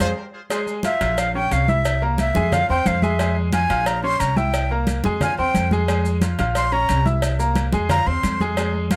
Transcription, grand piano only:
0.00 G#4 C5 F5
0.51 G#3 G#4 G#5
0.84 F4 F5 F6
1.01 F4 F5 F6
1.35 C#4 C#5 C#6
1.69 E4 E5 E6
2.02 A#3 A#4 A#5
2.35 G#3 G#4 G#5
2.53 F4 F5 F6
2.70 C4 C5 C6
3.03 G#3 G#4 G#5
3.20 G#3 G#4 G#5
3.53 F4 F5 F6
3.70 F4 F5 F6
4.04 C#4 C#5 C#6
4.37 E4 E5 E6
4.71 A#3 A#4 A#5
5.05 G#3 G#4 G#5
5.22 F4 F5 F6
5.38 C4 C5 C6
5.72 G#3 G#4 G#5
5.89 G#3 G#4 G#5
6.22 F4 F5 F6
6.39 F4 F5 F6
6.72 C#4 C#5 C#6
7.05 E4 E5 E6
7.39 A#3 A#4 A#5
7.73 G#3 G#4 G#5
7.90 F4 F5 F6
8.07 C4 C5 C6
8.41 G#3 G#4 G#5
8.58 G#3 G#4 G#5
8.92 F4 F5 F6

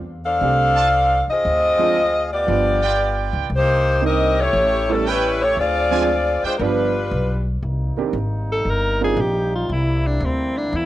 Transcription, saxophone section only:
0.25 D4 A4 C5 F5
1.30 C4 F4 G#4 D#5
2.32 B3 F4 G4 D5
3.56 A#3 D#4 G4 C5
4.06 C4 G4 A#4 D#5
4.40 A3 E4 G4 C#5
4.91 G3 C#4 E4 A4
5.08 G3 C#4 E4 B4
5.42 A3 E4 G4 C#5
5.59 C4 F4 G#4 D5
6.45 G#3 D4 F4 C5
6.58 G3 A#4
6.62 D4 F4 B4

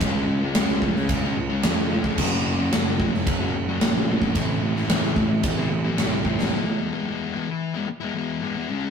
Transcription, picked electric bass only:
0.01 C#2
0.28 C#2
0.56 C#2
1.09 C#2
1.38 C#2
1.64 F2
2.18 F#1
2.45 F#1
2.72 F#1
3.27 F#1
3.54 F#1
3.81 A#1
4.35 A1
4.62 A1
4.89 A1
5.44 A1
5.71 A1
5.98 C2

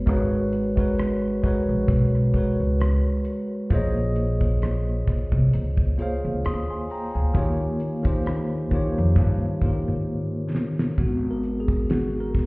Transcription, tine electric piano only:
Already playing: G#3 F#4 A#4 B4 C#5
0.06 G#3 F#4 A#4 B4 C#5
0.76 G#3 F#4 A#4 B4
0.80 C#5
1.43 G#3 F#4 A#4 B4
1.47 C#5
2.34 G#3 F#4 A#4 B4
2.38 C#5
3.70 A#3 F4 G#4 C5 C#5
3.75 D#5
5.98 A#3 F4 G#4 C5 C#5
6.02 F5
6.46 C6 D#6
6.70 G#5 C6
6.91 G5 A#5
7.15 F5 G#5
7.34 D#3 A#3 F4 G4 C#5
8.03 D#3 A#3 F4 G4
8.07 C5
8.71 D#3 A#3 F4 G4
8.75 C#5
9.61 D#3 A#3 F4 G4
9.66 A#4
10.98 G#3 B3 F#4
11.31 A#4
11.60 G#4
11.91 F#4
12.20 A#4

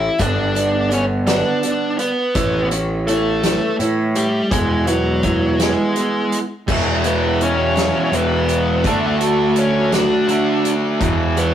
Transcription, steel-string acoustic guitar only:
0.18 D3 G3 B3 D4
0.55 D3 G3 B3 D4
0.91 D3 G3 B3
1.27 D3 G3 B3 D4
1.63 D3 G3 B3 D4
2.35 E3 A3 C#4 E4
2.71 E3 A3 C#4 E4
3.08 E3 A3 C#4 E4
3.43 E3 A3 C#4 E4
3.80 E3 A3 C#4 E4
4.52 E3 G#3 B3 E4
4.88 E3 G#3 B3 E4
5.23 E3 G#3 B3 E4
5.59 E3 G#3 B3 E4
5.96 E3 G#3 B3 E4
6.68 E3
7.05 G#3
7.41 B3
7.76 G#3
8.12 E3
8.48 B3
8.84 D3
9.21 F#3
9.57 A3
9.92 F#3
10.28 D3
10.65 A3
11.01 E3
11.37 G#3

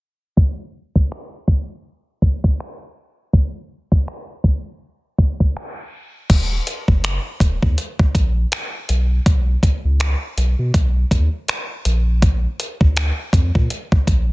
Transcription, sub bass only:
6.30 D#1
6.88 F#1
7.40 D#1
7.63 D#2
8.00 A#1
8.15 A#1
8.89 B1
9.26 B1
9.85 C#2
10.37 B1
10.59 B2
10.74 B1
11.11 D#2
11.85 A#1
12.81 D2
13.33 F2
13.55 A#2
13.92 A#1
14.07 A#1

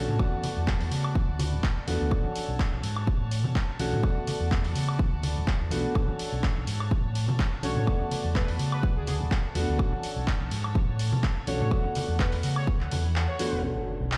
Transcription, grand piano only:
Already playing: A3 C#4 D4 F#4
0.19 A3 B3 F#4 D5
1.87 A3 B3 D4 F#4
2.11 C#4 D4 F#4 A4
3.79 A3 C#4 D4 F#4
4.03 A3 B3 F#4 D5
5.71 A3 B3 D4 F#4
5.95 C#4 D4 F#4 A4
7.63 A3 C#4 D4 F#4
7.87 A3 B3 F#4 D5
9.55 A3 B3 D4 F#4
9.78 C#4 D4 F#4 A4
11.47 A3 C#4 D4 F#4
11.71 A3 B3 F#4 D5
13.39 A3 B3 D4 F#4
13.62 C#4 D4 A4

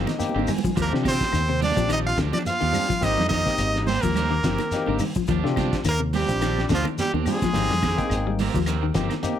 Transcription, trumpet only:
0.82 A#4
1.08 C5
1.64 D5
1.93 D#5
2.07 F5
2.33 D5
2.48 F5
3.04 D#5
3.29 D#5
3.87 C5
4.02 A#4
5.89 A#4
6.16 G4
6.74 F4
7.00 G4
7.27 G#4

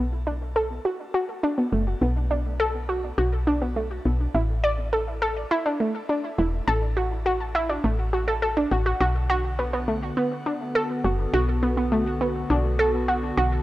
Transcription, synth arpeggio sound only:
Already playing: B3
0.27 D4
0.56 A4
0.85 F#4
1.14 F#4
1.43 D4
1.58 B3
1.72 A3
2.02 B3
2.31 D4
2.60 A4
2.89 F#4
3.18 F#4
3.47 D4
3.62 B3
3.76 A3
4.05 B3
4.34 E4
4.64 D5
4.93 A4
5.22 A4
5.51 E4
5.66 D4
5.80 A3
6.09 D4
6.38 E4
6.68 A4
6.97 F#4
7.26 F#4
7.55 E4
7.69 D4
7.84 A3
8.13 F#4
8.28 A4
8.42 A4
8.57 D4
8.71 F#4
8.86 F#4
9.01 F#4
9.30 F#4
9.59 B3
9.73 B3
9.88 A3
10.17 B3
10.46 D4
10.75 A4
11.04 F#4
11.34 F#4
11.63 B3
11.77 B3
11.92 A3
12.21 B3
12.50 D4
12.79 A4
13.08 F#4
13.37 F#4

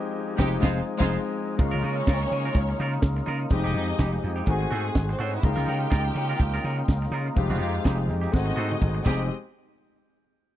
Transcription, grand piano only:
Already playing: G#3 C4 D#4 G4
0.37 G#3 C4 D#4 G4
0.60 G#3 C4 D#4
0.97 G#3 C4 D#4
1.57 G#3 A#3 D#4 F4
3.50 G#3 C4 D#4 G4
4.47 A3 C4 D#4 F#4
5.43 G#3 A#3 D#4 F4
7.35 G#3 C4 D#4 G4
8.32 A3 C4 D#4 F#4
9.07 G#3 C4 D#4 G4

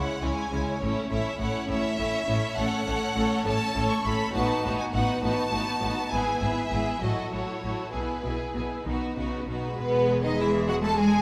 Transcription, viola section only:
Already playing: G#3 C#4
0.23 G#3 C#4
0.53 G#3 C#4
0.82 A3 C#4
1.10 A3 C#4
1.40 A3 C#4
1.69 A3 C#4
1.99 A3 C#4
2.29 A3 C#4
2.58 A3 C#4
2.87 A3 C#4
3.16 A3 C#4
3.46 A3 C#4
3.75 A3 C#4
4.04 A3 C#4
4.34 B3 D#4
4.64 B3 D#4
4.94 B3 D#4
5.23 B3 D#4
5.52 B3 D#4
5.81 B3 D#4
6.11 B3 E4
6.42 B3 E4
6.71 B3 E4
7.01 F#3 E4
7.32 F#3 E4
7.62 F#3 E4
7.93 B3 E4
8.24 B3 E4
8.54 B3 E4
8.85 B3 D#4
9.16 B3 D#4
9.47 B3 D#4
9.78 G#3 G#4

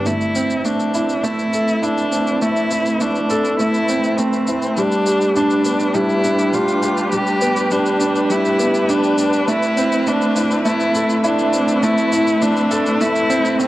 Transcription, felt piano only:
0.06 A3
0.36 C4
0.65 A3
0.95 E4
1.24 A3
1.53 A4
1.82 E4
2.12 C4
2.42 A3
2.71 E4
3.01 A3
3.30 A4
3.60 A3
3.89 C4
4.19 A3
4.48 E4
4.78 G3
5.06 G4
5.36 D4
5.66 B3
5.95 G3
6.24 D4
6.54 G3
6.83 G4
7.13 G3
7.42 B3
7.72 G3
8.01 D4
8.30 G3
8.59 B3
8.89 D4
9.18 D4
9.48 A3
9.77 C4
10.07 A3
10.36 E4
10.65 A3
10.95 A4
11.24 E4
11.53 C4
11.83 A3
12.12 E4
12.42 A3
12.71 A4
13.01 A3
13.30 C4
13.60 A3

